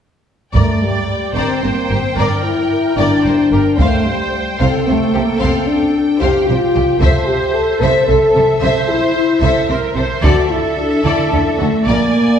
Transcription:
0.53 double bass section G1, cello section G2, french horn section A3, violin section A#4 D5 G5, viola section D5, taiko
0.83 french horn section G3
1.35 double bass section G1, cello section G2, french horn section C4, violin section A#4 D5, viola section C5
1.62 double bass section G1, cello section G2, french horn section A#3, violin section A#4
1.90 double bass section G1, cello section G2, french horn section C4, violin section G4 A#4
2.16 double bass section G1, cello section G2, french horn section D4, viola section A#4, violin section A#4 D5
2.43 french horn section E4
2.96 double bass section G1, cello section G2, french horn section D4, violin section A#4 D5, viola section D5
3.24 double bass section G1, cello section G2, violin section A#4, viola section C5
3.51 double bass section G1, cello section G2, violin section G4 A#4, viola section A#4
3.78 double bass section C2, cello section C3, french horn section A3, viola section C5, violin section C5 F5 G5, taiko
4.06 french horn section G3
4.59 double bass section C2, cello section C3, french horn section C4, viola section A4, violin section C5 F5
4.87 double bass section C2, cello section C3, french horn section A3, violin section C5
5.14 double bass section C2, cello section C3, french horn section A#3, violin section G4 C5
5.40 double bass section C2, cello section C3, french horn section C4, violin section C5 F5
5.67 french horn section D4
6.20 double bass section C2, cello section C3, viola section G4, french horn section G4, violin section C5 F5
6.46 double bass section C2, cello section C3, french horn section F4, violin section C5
6.75 double bass section C2, cello section C3, violin section G4 C5
7.00 double bass section C2, cello section C3, french horn section A4, viola section C5, violin section C5 E5, taiko
7.26 french horn section G4
7.54 french horn section A4
7.81 double bass section C2, cello section C3, viola section A4, french horn section C5, violin section C5 E5
8.09 double bass section C2, cello section C3, french horn section A4, violin section C5
8.35 double bass section C2, cello section C3, violin section A4 C5
8.61 double bass section C2, cello section C3, french horn section A4, viola section C5, violin section C5 E5
8.89 french horn section E4
9.17 french horn section E4
9.42 double bass section C2, cello section C3, viola section A4, violin section C5 E5
9.69 double bass section C2, cello section C3, viola section A#4, violin section C5
9.96 double bass section C2, cello section C3, violin section A4 C5, viola section C5
10.22 double bass section D2, cello section D3, french horn section F#4, viola section A4, violin section A4 D5 E5, taiko
10.50 french horn section E4
10.77 french horn section D4
11.04 double bass section D2, cello section D3, french horn section E4, violin section A4 D5
11.32 double bass section D2, cello section D3, french horn section D4, violin section A4
11.59 double bass section D2, cello section D3, french horn section A3, violin section F#4 A4
11.87 double bass section A#1, cello section A#2, french horn section A#3, violin section A#4 D5 G#5, viola section D5

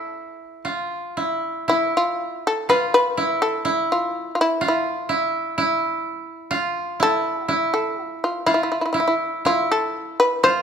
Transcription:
Already playing: koto E4, shamisen A4
0.65 koto F4
1.17 koto E4
1.68 koto E4, shamisen E4
1.97 shamisen F4
2.47 shamisen A4
2.69 koto F4, shamisen B4
2.94 shamisen B4
3.17 koto E4
3.42 shamisen A4
3.65 koto E4
3.92 shamisen F4
4.35 shamisen F4
4.41 shamisen E4
4.61 koto F4
4.68 shamisen E4
5.09 koto E4
5.58 koto E4
6.51 koto F4
7.00 koto E4, shamisen A4
7.48 koto E4, shamisen F4
7.74 shamisen A4
8.04 shamisen F4
8.24 shamisen F4
8.46 shamisen E4, koto F4
8.54 shamisen E4
8.63 shamisen E4
8.72 shamisen E4
8.81 shamisen E4
8.86 shamisen E4
8.93 shamisen E4, koto E4
9.00 shamisen E4
9.08 shamisen E4
9.45 koto E4, shamisen F4
9.72 shamisen A4
10.20 shamisen B4
10.43 koto F4, shamisen C5

